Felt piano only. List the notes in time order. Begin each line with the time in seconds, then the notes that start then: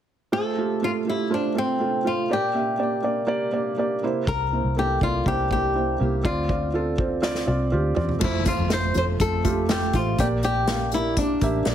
0.32 A3 F4 C5
0.57 A3 F4 G4
0.81 A3 F4 A4
1.05 A3 F4 G4
1.30 A3 F4 C5
1.55 A3 F4 A4
1.79 A3 F4 A4
2.04 A3 F4 C5
2.29 A#2 A#3 G4 D5
2.54 A#3 G4 E5
2.78 A#3 G4 D5
3.02 A#3 G4 D5
3.27 A#3 G4 D5
3.52 A#3 G4 D5
3.77 A#3 G4 D5
4.03 C3 A#3 E4 C5
4.52 A#3 E4 C5
4.76 A#3 E4 A4
5.01 A#3 E4 D5
5.26 A#3 E4 C5
5.50 A#3 E4 G4
5.75 A#3 E4 C5
5.99 A#3 E4 G4
6.23 D3 C4 F4 D5
6.48 C4 F4 D5
6.74 C4 F4 A4
6.98 C4 F4 C5
7.22 C4 F4 D5
7.46 C4 F4 D5
7.71 C4 F4 G4
7.95 C4 F4 D5
8.19 A3 F4 C5
8.44 A3 F4 C5
8.69 A3 F4 C5
8.94 A3 F4 A4
9.19 A3 F4 A4
9.44 A3 F4 G4
9.69 A3 F4 A4
9.93 A3 F4 C5
10.19 A#2 A#3 G4 D5
10.43 A#3 G4 D5
10.67 A#3 G4 F5
10.92 A#3 G4 A#4
11.17 A#3 G4 D5
11.41 A#3 G4 E5
11.65 A#3 G4 D5